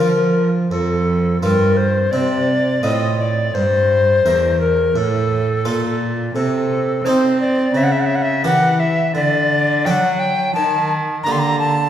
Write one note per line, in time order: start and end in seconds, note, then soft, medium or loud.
0.00 0.67 F3 medium
0.00 0.71 F3 medium
0.00 0.51 F4 soft
0.00 0.50 A#4 loud
0.71 1.38 F2 medium
0.71 1.41 F2 medium
0.71 1.38 A4 medium
1.42 2.11 G2 medium
1.42 2.09 G2 medium
1.42 1.93 C4 soft
1.42 1.94 F4 soft
1.42 1.78 A#4 medium
1.77 2.13 C5 medium
2.11 2.80 C3 medium
2.11 2.82 C3 medium
2.11 2.82 C4 soft
2.11 2.85 D5 loud
2.83 3.50 A2 medium
2.83 3.53 A2 medium
2.83 3.34 C4 medium
2.83 3.34 F4 medium
2.83 3.18 D#5 loud
3.19 3.56 D5 medium
3.54 4.24 G2 medium
3.54 4.21 G2 medium
3.54 4.60 C5 loud
4.25 4.94 E2 medium
4.25 4.92 E2 medium
4.25 4.76 E4 medium
4.25 4.76 A#4 medium
4.60 4.99 A#4 loud
4.96 5.61 A2 medium
4.96 5.67 A2 medium
4.96 6.03 A4 loud
5.65 6.34 A#2 medium
5.65 6.31 A#2 medium
5.65 6.16 F4 medium
5.65 6.16 A4 medium
6.35 7.03 C3 medium
6.35 7.01 C3 medium
6.35 7.06 A4 loud
7.04 7.73 C4 medium
7.04 7.71 C4 medium
7.04 7.56 D#4 medium
7.04 7.56 A4 medium
7.04 7.10 C#5 medium
7.09 7.39 C5 loud
7.40 7.78 D5 loud
7.74 8.45 C#3 medium
7.74 8.41 C#3 medium
7.74 7.85 E5 loud
7.83 7.93 F#5 loud
7.92 8.01 E5 loud
8.00 8.07 F#5 medium
8.06 8.17 E5 medium
8.15 8.24 F#5 medium
8.22 8.45 E5 loud
8.44 9.14 E3 medium
8.44 9.11 E3 medium
8.44 8.95 G4 medium
8.44 8.95 A#4 medium
8.44 8.81 F#5 loud
8.80 9.14 E5 loud
9.15 9.82 D3 medium
9.15 9.87 D3 medium
9.15 9.87 D5 loud
9.85 10.55 F#3 medium
9.85 10.52 F#3 medium
9.85 10.37 D4 medium
9.85 10.37 A4 medium
9.85 9.91 G5 loud
9.90 10.21 F#5 loud
10.19 10.54 G5 loud
10.54 11.25 D#3 medium
10.54 11.22 D#3 medium
10.54 10.93 A5 loud
11.23 11.89 D3 medium
11.23 11.77 A#3 soft
11.23 11.77 G4 medium
11.23 11.33 A#5 loud
11.32 11.40 C6 medium
11.39 11.59 A#5 loud
11.59 11.89 A5 loud